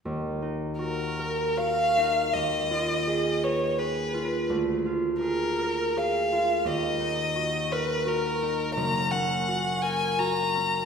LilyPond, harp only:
\new Staff \with { instrumentName = "Harp" } { \time 3/4 \key ees \minor \tempo 4 = 84 ees,8 ees'8 ges'8 bes'8 ges'8 ees'8 | ees,8 f'8 aes'8 ces''8 aes'8 f'8 | d,8 f'8 aes'8 bes'8 aes'8 f'8 | ees,8 ees'8 ges'8 bes'8 ges'8 ees'8 |
ges,,8 des'8 ges'8 bes'8 ges'8 des'8 | }